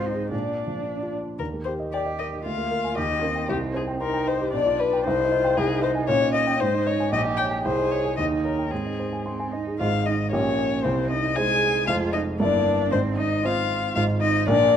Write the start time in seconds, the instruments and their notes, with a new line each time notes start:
Already playing: grand piano G#2 C4, violin C5
0.06 cello D#4
0.14 grand piano D#4 G#4
0.31 grand piano A#2, cello D4, violin D5
0.49 grand piano D4
0.67 grand piano F3
0.85 grand piano D4
1.03 grand piano F4
1.21 grand piano D4
1.39 grand piano D#2, violin A#4
1.53 grand piano A#3
1.64 grand piano G4, violin C5
1.80 grand piano D#5
1.92 cello G4, violin D5, grand piano G5
2.06 grand piano D#5
2.19 grand piano A#4, violin D#5
2.33 grand piano D#4
2.44 grand piano D2, cello F4, violin F5
2.58 grand piano A#3
2.71 grand piano A#4
2.84 grand piano G#5
2.96 grand piano D#2, cello G4, violin D#5
3.10 grand piano D#4
3.22 cello C4, grand piano A#4
3.36 grand piano G5
3.49 grand piano C2, violin G4
3.61 grand piano D#4
3.74 violin G#4, grand piano C5
3.87 grand piano G5
4.01 cello D#4, violin A#4, grand piano C6
4.14 grand piano G5
4.27 violin C5, grand piano D#5
4.41 grand piano G4
4.51 grand piano B1, cello D4, violin D5
4.66 grand piano F4
4.79 violin B4, grand piano D5
4.93 grand piano G5
5.04 grand piano C2, cello D#4, violin C5
5.19 grand piano D#4
5.31 cello F4, grand piano D#5
5.44 grand piano G5
5.57 grand piano C2, cello D#4, violin G#4
5.70 grand piano D#4
5.82 violin C5, grand piano D#5
5.95 grand piano G#5
6.08 grand piano A#2, cello C#4, violin C#5
6.22 grand piano D#4
6.34 violin D#5, grand piano D#5
6.47 grand piano G5
6.60 grand piano G#2, cello D#4, violin C5
6.74 grand piano D#4
6.86 violin C#5, grand piano D#5
7.00 grand piano G#5
7.12 grand piano A#1, cello G4, violin D#5
7.25 grand piano D#4
7.37 grand piano C#5, violin G5
7.51 grand piano G5
7.63 grand piano C2, cello G#4, violin C5
7.79 grand piano D#4
7.91 grand piano C5, violin C#5
8.05 grand piano G#5
8.17 grand piano D#2, cello D#4, violin D#5
8.31 grand piano D#4
8.44 violin A#4, grand piano C#5
8.59 grand piano G5
8.70 grand piano G#2, cello C4, violin G#4
8.86 grand piano D#4
9.00 grand piano C5
9.13 grand piano G#5
9.25 cello C4, grand piano C6
9.40 grand piano G#5
9.52 cello D#4, grand piano D#5
9.67 grand piano G#4
9.79 grand piano G#1 G#2 D#4 G#4 C5, cello F4, violin F5
10.05 cello D#4, violin D#5
10.31 grand piano A#1 A#2 A#3 G4 C#5, cello C#4, violin C#5
10.84 grand piano C2 C3, cello C4, violin C5
11.10 cello D#4, violin D#5
11.36 grand piano G#3 D#4 C5, cello G#4, violin G#5
11.87 grand piano F1 F2 G#3 F4 C5, cello F4, violin F5
12.13 cello D#4, violin D#5
12.39 grand piano G1 G2 A#3 E4 E5, cello D4, violin D5
12.91 grand piano G#1 G#2, cello C4, violin C5
13.17 cello D#4, violin D#5
13.44 grand piano C4 F4 C5, cello F4, violin F5
13.95 grand piano G#1 G#2 D#4 F4 C5, cello F4, violin F5
14.21 cello D#4, violin D#5
14.47 grand piano A#1 A#2 D4 F4 A#4, cello D4, violin D5